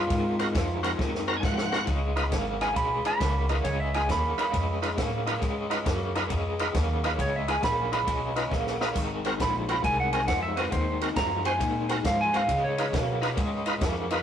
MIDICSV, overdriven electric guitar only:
0, 0, Header, 1, 2, 480
1, 0, Start_track
1, 0, Tempo, 442478
1, 116, Time_signature, 4, 2, 24, 8
1, 15433, End_track
2, 0, Start_track
2, 0, Title_t, "Overdriven electric guitar"
2, 0, Program_c, 0, 29
2, 111, Note_on_c, 0, 44, 91
2, 123, Note_on_c, 0, 51, 107
2, 560, Note_off_c, 0, 44, 0
2, 566, Note_off_c, 0, 51, 0
2, 595, Note_on_c, 0, 44, 84
2, 600, Note_on_c, 0, 53, 99
2, 878, Note_off_c, 0, 44, 0
2, 880, Note_off_c, 0, 53, 0
2, 910, Note_on_c, 0, 44, 81
2, 917, Note_on_c, 0, 53, 84
2, 1059, Note_off_c, 0, 44, 0
2, 1063, Note_off_c, 0, 53, 0
2, 1083, Note_on_c, 0, 44, 83
2, 1085, Note_on_c, 0, 51, 101
2, 1526, Note_off_c, 0, 44, 0
2, 1527, Note_off_c, 0, 51, 0
2, 1555, Note_on_c, 0, 44, 77
2, 1561, Note_on_c, 0, 53, 89
2, 1838, Note_off_c, 0, 44, 0
2, 1841, Note_off_c, 0, 53, 0
2, 1872, Note_on_c, 0, 44, 86
2, 1875, Note_on_c, 0, 53, 97
2, 2020, Note_off_c, 0, 44, 0
2, 2022, Note_off_c, 0, 53, 0
2, 2037, Note_on_c, 0, 49, 77
2, 2044, Note_on_c, 0, 56, 96
2, 2484, Note_off_c, 0, 49, 0
2, 2487, Note_off_c, 0, 56, 0
2, 2522, Note_on_c, 0, 49, 79
2, 2530, Note_on_c, 0, 58, 93
2, 2802, Note_off_c, 0, 49, 0
2, 2806, Note_off_c, 0, 58, 0
2, 2834, Note_on_c, 0, 49, 74
2, 2836, Note_on_c, 0, 58, 78
2, 2982, Note_off_c, 0, 49, 0
2, 2983, Note_off_c, 0, 58, 0
2, 2995, Note_on_c, 0, 49, 76
2, 2997, Note_on_c, 0, 56, 91
2, 3443, Note_off_c, 0, 49, 0
2, 3444, Note_off_c, 0, 56, 0
2, 3479, Note_on_c, 0, 49, 68
2, 3485, Note_on_c, 0, 58, 80
2, 3761, Note_off_c, 0, 49, 0
2, 3764, Note_off_c, 0, 58, 0
2, 3782, Note_on_c, 0, 49, 72
2, 3787, Note_on_c, 0, 58, 86
2, 3936, Note_off_c, 0, 49, 0
2, 3939, Note_off_c, 0, 58, 0
2, 3950, Note_on_c, 0, 49, 90
2, 3954, Note_on_c, 0, 56, 93
2, 4401, Note_off_c, 0, 49, 0
2, 4403, Note_off_c, 0, 56, 0
2, 4433, Note_on_c, 0, 49, 78
2, 4438, Note_on_c, 0, 58, 99
2, 4719, Note_off_c, 0, 49, 0
2, 4721, Note_off_c, 0, 58, 0
2, 4750, Note_on_c, 0, 49, 77
2, 4752, Note_on_c, 0, 58, 86
2, 4890, Note_off_c, 0, 49, 0
2, 4902, Note_off_c, 0, 58, 0
2, 4903, Note_on_c, 0, 49, 89
2, 4907, Note_on_c, 0, 56, 89
2, 5358, Note_off_c, 0, 49, 0
2, 5360, Note_off_c, 0, 56, 0
2, 5391, Note_on_c, 0, 49, 82
2, 5394, Note_on_c, 0, 58, 88
2, 5678, Note_off_c, 0, 49, 0
2, 5680, Note_off_c, 0, 58, 0
2, 5703, Note_on_c, 0, 49, 73
2, 5713, Note_on_c, 0, 58, 88
2, 5858, Note_off_c, 0, 49, 0
2, 5863, Note_off_c, 0, 58, 0
2, 5873, Note_on_c, 0, 49, 74
2, 5875, Note_on_c, 0, 56, 91
2, 6324, Note_off_c, 0, 49, 0
2, 6325, Note_off_c, 0, 56, 0
2, 6351, Note_on_c, 0, 49, 84
2, 6353, Note_on_c, 0, 58, 87
2, 6638, Note_off_c, 0, 49, 0
2, 6640, Note_off_c, 0, 58, 0
2, 6678, Note_on_c, 0, 49, 77
2, 6683, Note_on_c, 0, 58, 90
2, 6826, Note_off_c, 0, 49, 0
2, 6828, Note_off_c, 0, 58, 0
2, 6842, Note_on_c, 0, 49, 83
2, 6849, Note_on_c, 0, 56, 95
2, 7288, Note_off_c, 0, 49, 0
2, 7291, Note_off_c, 0, 56, 0
2, 7322, Note_on_c, 0, 49, 77
2, 7325, Note_on_c, 0, 58, 88
2, 7604, Note_off_c, 0, 49, 0
2, 7605, Note_off_c, 0, 58, 0
2, 7635, Note_on_c, 0, 49, 75
2, 7636, Note_on_c, 0, 58, 87
2, 7784, Note_off_c, 0, 49, 0
2, 7785, Note_off_c, 0, 58, 0
2, 7800, Note_on_c, 0, 49, 79
2, 7803, Note_on_c, 0, 56, 98
2, 8247, Note_off_c, 0, 49, 0
2, 8248, Note_off_c, 0, 56, 0
2, 8286, Note_on_c, 0, 49, 90
2, 8288, Note_on_c, 0, 58, 101
2, 8565, Note_off_c, 0, 49, 0
2, 8566, Note_off_c, 0, 58, 0
2, 8589, Note_on_c, 0, 49, 70
2, 8597, Note_on_c, 0, 58, 87
2, 8741, Note_off_c, 0, 49, 0
2, 8745, Note_off_c, 0, 58, 0
2, 8758, Note_on_c, 0, 49, 89
2, 8763, Note_on_c, 0, 56, 97
2, 9205, Note_off_c, 0, 49, 0
2, 9208, Note_off_c, 0, 56, 0
2, 9228, Note_on_c, 0, 49, 73
2, 9235, Note_on_c, 0, 58, 83
2, 9516, Note_off_c, 0, 49, 0
2, 9519, Note_off_c, 0, 58, 0
2, 9543, Note_on_c, 0, 49, 69
2, 9551, Note_on_c, 0, 58, 86
2, 9697, Note_off_c, 0, 49, 0
2, 9701, Note_off_c, 0, 58, 0
2, 9720, Note_on_c, 0, 44, 88
2, 9725, Note_on_c, 0, 51, 90
2, 10166, Note_off_c, 0, 44, 0
2, 10168, Note_off_c, 0, 51, 0
2, 10196, Note_on_c, 0, 44, 79
2, 10200, Note_on_c, 0, 53, 86
2, 10479, Note_off_c, 0, 44, 0
2, 10481, Note_off_c, 0, 53, 0
2, 10503, Note_on_c, 0, 44, 81
2, 10510, Note_on_c, 0, 53, 81
2, 10657, Note_off_c, 0, 44, 0
2, 10660, Note_off_c, 0, 53, 0
2, 10675, Note_on_c, 0, 44, 82
2, 10680, Note_on_c, 0, 51, 84
2, 11123, Note_off_c, 0, 44, 0
2, 11125, Note_off_c, 0, 51, 0
2, 11157, Note_on_c, 0, 44, 72
2, 11161, Note_on_c, 0, 53, 80
2, 11439, Note_off_c, 0, 44, 0
2, 11441, Note_off_c, 0, 53, 0
2, 11459, Note_on_c, 0, 44, 79
2, 11463, Note_on_c, 0, 53, 85
2, 11614, Note_off_c, 0, 44, 0
2, 11616, Note_off_c, 0, 53, 0
2, 11626, Note_on_c, 0, 44, 85
2, 11632, Note_on_c, 0, 51, 107
2, 12077, Note_off_c, 0, 44, 0
2, 12080, Note_off_c, 0, 51, 0
2, 12104, Note_on_c, 0, 44, 91
2, 12111, Note_on_c, 0, 53, 92
2, 12392, Note_off_c, 0, 44, 0
2, 12396, Note_off_c, 0, 53, 0
2, 12418, Note_on_c, 0, 44, 77
2, 12428, Note_on_c, 0, 53, 91
2, 12573, Note_off_c, 0, 44, 0
2, 12578, Note_off_c, 0, 53, 0
2, 12585, Note_on_c, 0, 44, 95
2, 12588, Note_on_c, 0, 51, 97
2, 13036, Note_off_c, 0, 44, 0
2, 13038, Note_off_c, 0, 51, 0
2, 13075, Note_on_c, 0, 44, 83
2, 13077, Note_on_c, 0, 53, 88
2, 13357, Note_off_c, 0, 44, 0
2, 13358, Note_off_c, 0, 53, 0
2, 13383, Note_on_c, 0, 44, 79
2, 13391, Note_on_c, 0, 53, 95
2, 13535, Note_off_c, 0, 44, 0
2, 13539, Note_off_c, 0, 53, 0
2, 13545, Note_on_c, 0, 49, 87
2, 13550, Note_on_c, 0, 56, 107
2, 13995, Note_off_c, 0, 49, 0
2, 13998, Note_off_c, 0, 56, 0
2, 14032, Note_on_c, 0, 49, 88
2, 14043, Note_on_c, 0, 58, 100
2, 14315, Note_off_c, 0, 49, 0
2, 14320, Note_off_c, 0, 58, 0
2, 14361, Note_on_c, 0, 49, 72
2, 14364, Note_on_c, 0, 58, 87
2, 14503, Note_off_c, 0, 49, 0
2, 14504, Note_off_c, 0, 58, 0
2, 14515, Note_on_c, 0, 49, 89
2, 14521, Note_on_c, 0, 56, 109
2, 14960, Note_off_c, 0, 49, 0
2, 14963, Note_off_c, 0, 56, 0
2, 14995, Note_on_c, 0, 49, 84
2, 14996, Note_on_c, 0, 58, 86
2, 15276, Note_off_c, 0, 49, 0
2, 15276, Note_off_c, 0, 58, 0
2, 15300, Note_on_c, 0, 49, 80
2, 15306, Note_on_c, 0, 58, 92
2, 15433, Note_off_c, 0, 49, 0
2, 15433, Note_off_c, 0, 58, 0
2, 15433, End_track
0, 0, End_of_file